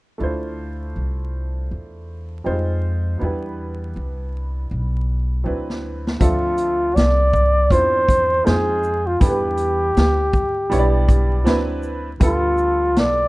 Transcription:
0.18 upright bass D2, upright piano A3 D4 E4
0.22 upright piano F4 C5
0.96 upright bass C2
1.71 upright bass E2
2.44 upright bass F2, upright piano G3 C4 D#4 F4 C5
2.51 upright piano G#3
3.17 upright bass E2, upright piano F#3 B3 D4
3.22 upright piano G3 E4 B4
3.96 upright bass C2
4.71 upright bass B1
5.44 upright bass D2, upright piano F#3 C4 D4 E4 B4
5.70 snare
6.07 snare
6.20 upright bass D2, upright piano F3 C4 D4 A4 E5, flugelhorn F4, kick, closed hi-hat
6.58 closed hi-hat, shaker
6.96 upright bass C2, flugelhorn D5, snare, closed hi-hat
7.33 kick, shaker
7.70 upright bass E2, upright piano C4 D4 E4 F4 C5, flugelhorn C5, kick, closed hi-hat
8.09 kick, closed hi-hat, shaker
8.44 upright bass F2, upright piano G#3 C4 D#4 F4 C5, flugelhorn G#4, snare, closed hi-hat
8.83 shaker
9.07 flugelhorn F4
9.20 upright bass E2, upright piano G3 B3 D4 E4 A4, flugelhorn G4, kick, closed hi-hat
9.29 upright piano B4
9.57 closed hi-hat, shaker
9.97 upright bass D2, snare, closed hi-hat
10.33 kick, shaker
10.70 upright bass B1, upright piano G3 B3 D4 E4 C#5, closed hi-hat
10.79 upright piano D5
11.09 kick, closed hi-hat, shaker
11.44 upright bass D2, upright piano F#3 C4 D4 E4 B4, snare, closed hi-hat
11.83 shaker
12.20 upright bass D2, upright piano G3 B3 D4 F4 A4, flugelhorn F4, kick, closed hi-hat
12.57 shaker
12.96 upright bass B1, flugelhorn D5, snare, closed hi-hat

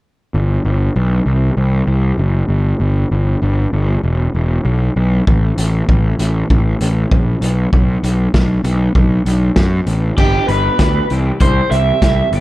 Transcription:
0.34 picked electric bass G1, clean electric guitar E3
0.65 picked electric bass G1, clean electric guitar E3
0.96 picked electric bass B1, clean electric guitar D4
1.26 picked electric bass C2, clean electric guitar E3
1.57 picked electric bass C2, clean electric guitar E3
1.87 picked electric bass C2, clean electric guitar E4
2.18 picked electric bass F#1, clean electric guitar E3
2.49 picked electric bass G1, clean electric guitar E3
2.80 picked electric bass G1, clean electric guitar E3
3.11 picked electric bass G1, clean electric guitar E3
3.42 picked electric bass G1, clean electric guitar D4
3.73 picked electric bass G1, clean electric guitar B3
4.03 picked electric bass E1, clean electric guitar E3
4.35 picked electric bass E1, clean electric guitar E4
4.65 picked electric bass B1, clean electric guitar E3
4.96 picked electric bass B1, clean electric guitar E4
5.27 picked electric bass A1, clean electric guitar E3, kick
5.57 picked electric bass A1, clean electric guitar E3, closed hi-hat
5.88 picked electric bass A1, clean electric guitar C#4, kick
6.19 picked electric bass A1, clean electric guitar A3, closed hi-hat
6.50 picked electric bass A1, clean electric guitar E3, kick
6.81 picked electric bass A1, clean electric guitar C#4, closed hi-hat
7.11 picked electric bass A#1, clean electric guitar E3, kick
7.41 picked electric bass B1, clean electric guitar B3, closed hi-hat
7.73 picked electric bass B1, clean electric guitar B3, kick
8.03 picked electric bass B1, clean electric guitar B3, closed hi-hat
8.34 picked electric bass B1, clean electric guitar D4, kick, snare
8.64 picked electric bass B1, clean electric guitar B3, closed hi-hat
8.95 picked electric bass B1, clean electric guitar B3, kick
9.26 picked electric bass B1, clean electric guitar D4, closed hi-hat
9.56 picked electric bass F#2, clean electric guitar B3, kick, snare
9.86 picked electric bass A1, clean electric guitar D4, closed hi-hat
10.17 picked electric bass G1, clean electric guitar E3 B3 D4 G4, overdriven electric guitar G4, kick, crash
10.33 clean electric guitar B3 D4 G4
10.48 picked electric bass G1, overdriven electric guitar B4, closed hi-hat
10.63 clean electric guitar B3 D4 G4
10.79 picked electric bass D2, clean electric guitar E3 B3 D4 G4, kick, snare, closed hi-hat
11.09 picked electric bass C2, clean electric guitar E3 C4 E4 G4, closed hi-hat
11.26 clean electric guitar C4 E4 G4
11.40 picked electric bass C2, overdriven electric guitar C5, kick, closed hi-hat
11.56 clean electric guitar C4 E4 G4
11.71 picked electric bass C2, clean electric guitar E3 C4 E4 G4, overdriven electric guitar E5, closed hi-hat
11.87 clean electric guitar C4 E4 G4
12.02 picked electric bass C2, clean electric guitar E3 C4 E4 G4, kick, snare, closed hi-hat
12.32 picked electric bass G1, clean electric guitar E3 B3 D4 G4, closed hi-hat

